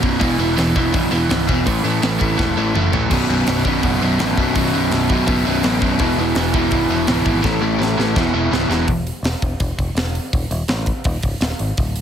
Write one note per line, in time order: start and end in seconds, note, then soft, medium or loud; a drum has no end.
0.02 0.18 B0 medium
0.02 0.20 B1 medium
0.02 0.20 F#2 medium
0.02 0.19 B2 medium
0.02 kick medium
0.20 0.37 E1 loud
0.20 0.37 E2 loud
0.20 0.38 B2 loud
0.20 0.39 E3 loud
0.20 kick loud
0.20 open hi-hat medium
0.38 0.54 E1 loud
0.38 0.55 E2 medium
0.38 0.55 B2 medium
0.38 0.57 E3 loud
0.56 0.73 E1 loud
0.56 0.74 E2 loud
0.56 0.74 B2 loud
0.56 0.75 E3 loud
0.56 snare loud
0.56 open hi-hat medium
0.75 0.91 E1 loud
0.75 0.91 E2 medium
0.75 0.91 B2 loud
0.75 0.92 E3 loud
0.75 kick medium
0.92 1.09 B0 loud
0.92 1.09 E2 medium
0.92 1.10 B2 medium
0.92 1.10 E3 loud
0.92 kick loud
0.92 open hi-hat medium
1.10 1.27 E1 loud
1.10 1.27 E2 loud
1.10 1.28 B2 loud
1.10 1.28 E3 loud
1.28 1.45 C#1 medium
1.28 1.46 E2 medium
1.28 1.46 B2 medium
1.28 1.47 E3 loud
1.28 snare loud
1.28 open hi-hat medium
1.47 1.64 E1 loud
1.47 1.64 E2 medium
1.47 1.64 B2 loud
1.47 1.65 E3 loud
1.47 kick medium
1.66 1.82 A1 loud
1.66 1.82 A2 medium
1.66 1.83 E3 loud
1.66 1.84 A3 loud
1.66 kick loud
1.66 open hi-hat medium
1.83 1.99 A1 loud
1.83 2.01 A2 medium
1.83 2.01 E3 medium
1.83 2.02 A3 medium
2.02 2.18 A1 loud
2.02 2.18 A2 loud
2.02 2.18 E3 loud
2.02 2.19 A3 loud
2.02 snare loud
2.02 open hi-hat medium
2.19 2.36 A1 medium
2.19 2.36 A2 medium
2.19 2.37 E3 loud
2.19 2.37 A3 loud
2.19 kick medium
2.38 2.54 E1 medium
2.38 2.55 A2 medium
2.38 2.56 E3 medium
2.38 2.56 A3 medium
2.38 kick loud
2.38 snare medium
2.56 2.72 A1 loud
2.56 2.73 A2 loud
2.56 2.74 E3 loud
2.56 2.74 A3 loud
2.74 2.90 F#1 medium
2.74 2.91 A2 medium
2.74 2.91 E3 medium
2.74 2.92 A3 loud
2.74 mid tom loud
2.92 3.08 A1 medium
2.92 3.09 A2 medium
2.92 3.09 E3 medium
2.92 3.10 A3 loud
2.92 floor tom loud
3.10 3.26 B0 loud
3.10 3.28 B1 loud
3.10 3.28 F#2 medium
3.10 3.30 B2 loud
3.10 kick loud
3.10 open hi-hat medium
3.10 crash loud
3.27 3.43 B0 loud
3.27 3.46 B1 medium
3.27 3.46 F#2 medium
3.27 3.47 B2 medium
3.46 3.62 B0 loud
3.46 3.64 B1 medium
3.46 3.64 F#2 medium
3.46 3.65 B2 loud
3.46 snare loud
3.46 open hi-hat medium
3.65 3.81 B0 medium
3.65 3.81 B1 medium
3.65 3.81 F#2 medium
3.65 3.82 B2 loud
3.65 kick medium
3.82 3.98 F#1 loud
3.82 4.00 B1 medium
3.82 4.01 F#2 medium
3.82 4.01 B2 loud
3.82 kick loud
3.82 open hi-hat medium
4.01 4.17 B0 medium
4.01 4.17 B1 loud
4.01 4.18 F#2 loud
4.01 4.19 B2 loud
4.18 4.34 A1 medium
4.18 4.36 B1 loud
4.18 4.36 F#2 loud
4.18 4.37 B2 medium
4.18 snare loud
4.18 open hi-hat medium
4.37 4.53 B0 medium
4.37 4.53 B1 medium
4.37 4.54 F#2 medium
4.37 4.55 B2 medium
4.37 kick medium
4.55 4.71 B0 loud
4.55 4.71 B1 loud
4.55 4.72 F#2 loud
4.55 4.73 B2 loud
4.55 kick loud
4.55 open hi-hat medium
4.72 4.89 B0 loud
4.72 4.90 B1 medium
4.72 4.90 F#2 medium
4.72 4.91 B2 medium
4.91 5.07 B0 medium
4.91 5.08 B1 loud
4.91 5.08 F#2 loud
4.91 5.09 B2 loud
4.91 snare loud
4.91 open hi-hat medium
5.09 5.25 B0 medium
5.09 5.25 B1 loud
5.09 5.25 F#2 loud
5.09 5.26 B2 loud
5.09 kick medium
5.26 5.43 F#1 loud
5.26 5.43 B1 medium
5.26 5.44 F#2 medium
5.26 5.44 B2 loud
5.26 kick loud
5.26 open hi-hat medium
5.44 5.61 B0 loud
5.44 5.61 B1 medium
5.44 5.62 F#2 loud
5.44 5.63 B2 loud
5.63 5.79 A1 medium
5.63 5.79 B1 medium
5.63 5.80 F#2 medium
5.63 5.81 B2 medium
5.63 snare loud
5.63 open hi-hat medium
5.80 5.97 B0 medium
5.80 5.98 B1 medium
5.80 5.98 F#2 loud
5.80 5.98 B2 loud
5.80 kick medium
5.99 6.15 E1 loud
5.99 6.17 E2 loud
5.99 6.17 B2 loud
5.99 6.18 E3 loud
5.99 kick loud
5.99 open hi-hat medium
6.18 6.33 E1 loud
6.18 6.34 E2 medium
6.18 6.35 B2 medium
6.18 6.36 E3 loud
6.35 6.51 E1 medium
6.35 6.51 E2 loud
6.35 6.52 B2 medium
6.35 6.53 E3 loud
6.35 snare loud
6.35 open hi-hat medium
6.52 6.69 E1 loud
6.52 6.69 E2 medium
6.52 6.70 B2 loud
6.52 6.71 E3 loud
6.52 kick medium
6.71 6.87 B0 loud
6.71 6.88 E2 medium
6.71 6.89 B2 loud
6.71 6.90 E3 loud
6.71 kick loud
6.71 open hi-hat medium
6.89 7.05 E1 loud
6.89 7.05 E2 loud
6.89 7.06 B2 loud
6.89 7.07 E3 loud
7.07 7.23 C#1 loud
7.07 7.23 E2 medium
7.07 7.24 B2 loud
7.07 7.25 E3 loud
7.07 snare loud
7.07 open hi-hat medium
7.25 7.41 G#1 medium
7.25 7.42 E2 medium
7.25 7.42 B2 medium
7.25 7.43 E3 medium
7.25 kick medium
7.42 7.59 A1 loud
7.42 7.60 A2 loud
7.42 7.61 E3 loud
7.42 7.61 A3 loud
7.42 kick loud
7.42 snare medium
7.61 7.77 A1 loud
7.61 7.77 A2 medium
7.61 7.78 E3 medium
7.61 7.78 A3 loud
7.78 7.95 A1 medium
7.78 7.96 A2 loud
7.78 7.97 E3 loud
7.78 7.97 A3 loud
7.78 snare medium
7.98 8.13 A1 medium
7.98 8.15 A2 medium
7.98 8.15 E3 medium
7.98 8.15 A3 loud
7.98 snare medium
8.15 8.31 E1 loud
8.15 8.32 E2 loud
8.15 8.33 B2 loud
8.15 8.33 E3 loud
8.15 kick loud
8.15 snare loud
8.33 8.49 E1 medium
8.33 8.50 E2 loud
8.33 8.51 B2 loud
8.33 8.51 E3 loud
8.51 8.67 C#1 medium
8.51 8.67 E2 medium
8.51 8.68 B2 medium
8.51 8.69 E3 medium
8.51 snare loud
8.69 8.85 E1 medium
8.69 8.86 E2 medium
8.69 8.87 B2 medium
8.69 8.87 E3 loud
8.69 snare loud
8.88 9.10 E1 medium
8.88 kick loud
8.88 open hi-hat medium
9.07 open hi-hat medium
9.23 9.34 E1 medium
9.23 snare loud
9.23 open hi-hat medium
9.42 9.53 E1 medium
9.42 kick medium
9.42 open hi-hat soft
9.60 9.71 E1 medium
9.60 kick loud
9.60 open hi-hat medium
9.78 9.89 E1 medium
9.78 kick medium
9.78 open hi-hat medium
9.95 10.18 E1 medium
9.95 snare loud
9.95 open hi-hat medium
10.15 open hi-hat medium
10.33 10.44 D#1 medium
10.33 kick loud
10.33 open hi-hat medium
10.51 10.62 D#1 medium
10.51 open hi-hat medium
10.68 10.91 A1 medium
10.68 snare loud
10.68 open hi-hat medium
10.86 kick medium
10.86 open hi-hat medium
11.04 11.16 D#1 medium
11.04 kick loud
11.04 open hi-hat medium
11.23 11.34 C#1 medium
11.23 kick medium
11.23 open hi-hat medium
11.40 11.52 D#1 medium
11.40 snare loud
11.40 open hi-hat medium
11.59 11.71 G#1 medium
11.59 open hi-hat medium
11.77 12.00 D1 medium
11.77 kick loud
11.77 open hi-hat medium
11.96 open hi-hat medium